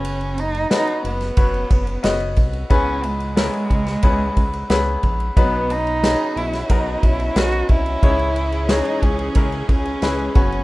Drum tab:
RD |xxxxxxxxxxxxxxxx|x-xxxxxxx-xxx-xx|x-xxx-xxx-xxxxxx|xxxxxxxxxxxxxxxx|
SD |----o--o----o---|----o--o----o---|----o--o----o---|----o-------o---|
BD |--------o-o---o-|o-----o-o-o---o-|o-------o-o---o-|o-----o-o-o---o-|